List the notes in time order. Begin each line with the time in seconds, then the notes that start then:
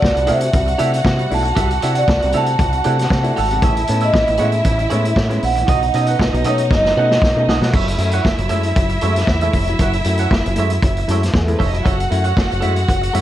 Already playing: F#4 D5 F#5
0.01 C2 D4 E4, muted clean electric guitar stroke, kick, snare
0.15 C2 C3 G3, muted clean electric guitar stroke, closed hi-hat
0.26 C3 A3 D4 E4 G4 A4 E5 F#5, closed hi-hat
0.41 muted clean electric guitar stroke, closed hi-hat
0.52 C2 C3 G3, muted clean electric guitar stroke, kick, closed hi-hat
0.66 muted clean electric guitar stroke, closed hi-hat
0.78 C3 A3 D4 E4 G4 A4 E5, closed hi-hat
0.92 D4 E4, muted clean electric guitar stroke, closed hi-hat
1.04 C3 D4 E4, muted clean electric guitar stroke, kick, snare
1.18 C3 G3, muted clean electric guitar stroke, closed hi-hat
1.30 B1 A3 D4 E4 A5, open hi-hat
1.43 muted clean electric guitar stroke, closed hi-hat
1.55 C2 C3 G3 G4 A4 E5, kick, closed hi-hat
1.70 muted clean electric guitar stroke, closed hi-hat
1.81 C3 D4 E4 G4 A4 E5, closed hi-hat
1.95 G4 A4 D5 F#5, closed hi-hat
2.08 C2 D4 E4, muted clean electric guitar stroke, kick, snare
2.20 C2 C3 G3, muted clean electric guitar stroke, closed hi-hat
2.32 C3 A3 D4 E4 G4 A4 E5, closed hi-hat
2.37 A5
2.46 muted clean electric guitar stroke, closed hi-hat
2.59 C2 C3 G3, muted clean electric guitar stroke, kick, closed hi-hat
2.72 muted clean electric guitar stroke, closed hi-hat
2.84 C3 A3 D4 E4 G4 A4 F#5, closed hi-hat
2.97 D4 E4, muted clean electric guitar stroke, snare, closed hi-hat
3.10 C3, muted clean electric guitar stroke, kick, snare
3.23 A3 D4 E4, muted clean electric guitar stroke, closed hi-hat
3.36 G#1 G4 A4 E5 A5, open hi-hat
3.50 C3 G3 G4 A4 F#5, closed hi-hat
3.62 A1 A2 E3 E4 G#4 C#5 E5, kick, closed hi-hat
3.76 muted clean electric guitar stroke, closed hi-hat
3.87 A2 B3 C#4, muted clean electric guitar stroke, closed hi-hat
4.00 G#4 C#5 D#5 E5, closed hi-hat
4.12 A1 B3 C#4, muted clean electric guitar stroke, kick, snare
4.27 A1 A2 E3, muted clean electric guitar stroke, closed hi-hat
4.37 A2 G#3 B3 C#4 G#4 C#5 F#5, closed hi-hat
4.42 E5
4.52 muted clean electric guitar stroke, closed hi-hat
4.64 A1 A2 E3, muted clean electric guitar stroke, kick, closed hi-hat
4.78 muted clean electric guitar stroke, closed hi-hat
4.90 A2 G#3 B3 C#4 G#4 C#5 E5, closed hi-hat
5.04 B3 C#4, muted clean electric guitar stroke, closed hi-hat
5.16 A2, muted clean electric guitar stroke, kick, snare
5.29 G#3 B3 C#4, muted clean electric guitar stroke, closed hi-hat
5.43 A#1 F#5, open hi-hat
5.56 A2 E3, muted clean electric guitar stroke, closed hi-hat
5.67 B1 B2 F#3 D#4 F#4 A4 D#5, kick, closed hi-hat
5.81 muted clean electric guitar stroke, closed hi-hat
5.94 B2 C#4 D#4 F#4 A4 D#5, closed hi-hat
6.06 F#4 A4 B4 F#5, closed hi-hat
6.19 B1 C#4 D#4, muted clean electric guitar stroke, kick, snare
6.33 B1 B2 F#3, muted clean electric guitar stroke, closed hi-hat
6.44 B2 A3 C#4 D#4 F#4 A4 C#5 D#5, closed hi-hat
6.58 muted clean electric guitar stroke, closed hi-hat
6.71 F#1 B2 F#3 D#5, muted clean electric guitar stroke, kick, snare
6.85 muted clean electric guitar stroke, snare
6.97 B2 A3 C#4 D#4 F#4 A4 F#5
7.11 C#4 D#4, muted clean electric guitar stroke, snare
7.22 B1, muted clean electric guitar stroke, kick, snare
7.36 B2 A3 C#4 D#4, muted clean electric guitar stroke
7.47 B1 F#4 A4 D#5, snare
7.61 B2 F#3 F#4 A4 F#5, snare
7.72 F#1 F#3 E4 A4 C#5 E5, kick, crash
7.88 muted clean electric guitar stroke, closed hi-hat
7.98 F#2 A3 E4, muted clean electric guitar stroke, closed hi-hat
8.11 A4 C#5 F#5, closed hi-hat
8.25 F#1 A3 E4, kick, snare
8.38 F#1 F#3, muted clean electric guitar stroke, closed hi-hat
8.49 F#2 G#3 A3 E4 A4 C#5 E5, closed hi-hat
8.63 muted clean electric guitar stroke, closed hi-hat
8.75 F#1 F#3, muted clean electric guitar stroke, kick, closed hi-hat
8.89 muted clean electric guitar stroke, closed hi-hat
9.01 F#2 G#3 A3 E4 A4 C#5 E5, closed hi-hat
9.16 A3 E4, muted clean electric guitar stroke, snare, closed hi-hat
9.27 E2, muted clean electric guitar stroke, kick, snare
9.41 G#3 A3 E4 A4 C#5 E5, closed hi-hat
9.53 F1 A4 C#5 E5, kick, open hi-hat
9.67 F#3, muted clean electric guitar stroke, closed hi-hat
9.79 F#1 F#3 A4 C#5 F#5, kick, closed hi-hat
9.93 muted clean electric guitar stroke, closed hi-hat
10.04 F#2 A3 E4, muted clean electric guitar stroke, closed hi-hat
10.17 A4 C#5 F#5, closed hi-hat
10.31 F#1 A3 E4, muted clean electric guitar stroke, kick, snare
10.44 F#1 F#3, muted clean electric guitar stroke, closed hi-hat
10.56 F#2 G#3 A3 E4 A4 C#5, closed hi-hat
10.60 E5
10.70 muted clean electric guitar stroke, closed hi-hat
10.82 F#1 F#3, muted clean electric guitar stroke, kick, closed hi-hat
10.97 muted clean electric guitar stroke, closed hi-hat
11.08 F#2 G#3 A3 E4 A4 C#5, closed hi-hat
11.12 E5
11.22 A3 E4, muted clean electric guitar stroke, snare, closed hi-hat
11.33 E2 G#3 G#4, kick, snare
11.41 A3 A4
11.47 G#3 A3 B3 E4, muted clean electric guitar stroke, closed hi-hat
11.51 B4
11.59 F1 C#4 A4 C#5 E5, kick, open hi-hat
11.68 D#4 D#5
11.73 F#3 E4 E5, muted clean electric guitar stroke, closed hi-hat
11.85 F#1 F#3 F#4 A4 C#5 E5 F#5, kick, closed hi-hat
11.98 muted clean electric guitar stroke, closed hi-hat
12.10 F#2 A3 E4, muted clean electric guitar stroke, closed hi-hat
12.24 A4 C#5 F#5, closed hi-hat
12.36 F#1 A3, muted clean electric guitar stroke, kick, snare
12.50 F#1 F#3, muted clean electric guitar stroke, closed hi-hat
12.61 F#2 G#3 A3 E4 A4 C#5 E5, closed hi-hat
12.76 muted clean electric guitar stroke, closed hi-hat
12.88 F#1 F#3, muted clean electric guitar stroke, kick, closed hi-hat
13.02 muted clean electric guitar stroke, closed hi-hat
13.13 F#2 G#3 A3 E4 A4 C#5 E5, closed hi-hat